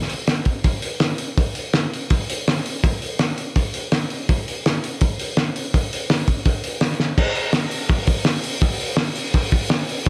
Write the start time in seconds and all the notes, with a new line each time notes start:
0.02 snare
0.10 open hi-hat
0.28 snare, open hi-hat
0.45 kick, open hi-hat
0.64 kick, open hi-hat
0.82 open hi-hat
1.00 snare, open hi-hat
1.18 open hi-hat
1.38 kick, open hi-hat
1.55 open hi-hat
1.73 snare, open hi-hat
1.94 open hi-hat
2.10 kick, open hi-hat
2.30 open hi-hat
2.48 snare, open hi-hat
2.57 snare
2.66 open hi-hat
2.84 kick, open hi-hat
3.02 open hi-hat
3.19 snare, open hi-hat
3.38 open hi-hat
3.56 kick, open hi-hat
3.74 open hi-hat
3.92 snare, open hi-hat
4.10 open hi-hat
4.29 kick, open hi-hat
4.48 open hi-hat
4.66 snare, open hi-hat
4.84 open hi-hat
5.01 kick, open hi-hat
5.19 open hi-hat
5.37 snare, open hi-hat
5.56 open hi-hat
5.74 kick, open hi-hat
5.93 open hi-hat
6.10 snare, open hi-hat
6.28 kick, open hi-hat
6.46 kick, open hi-hat
6.64 open hi-hat
6.81 snare, open hi-hat
6.91 snare
7.00 snare
7.18 kick, crash
7.35 open hi-hat
7.53 snare, open hi-hat
7.71 open hi-hat
7.89 kick, open hi-hat
8.07 kick, open hi-hat
8.25 snare, open hi-hat
8.44 open hi-hat
8.61 kick, open hi-hat
8.80 open hi-hat
8.96 snare, open hi-hat
9.16 open hi-hat
9.34 kick, open hi-hat
9.51 kick, open hi-hat
9.70 snare, open hi-hat
9.89 open hi-hat
10.06 open hi-hat